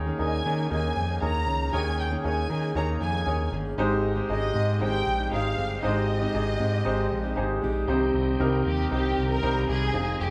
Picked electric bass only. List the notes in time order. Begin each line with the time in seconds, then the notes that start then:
0.20 D#2
0.45 D#3
0.71 D#2
0.97 F2
1.22 D#2
1.48 C#2
1.73 D#2
2.25 D#2
2.50 D#3
2.75 D#2
3.01 F2
3.27 D#2
3.52 G1
3.78 G#1
4.30 G#1
4.55 G#2
4.81 G#1
5.06 A#1
5.32 G#1
5.58 G1
5.83 G#1
6.35 G#1
6.60 G#2
6.86 G#1
7.12 A#1
7.38 G#1
7.63 A#1
7.88 C2
8.14 C2
8.40 C2
8.66 D#2
8.92 C2
9.18 C2
9.43 C2
9.69 C2
9.94 F1
10.20 F1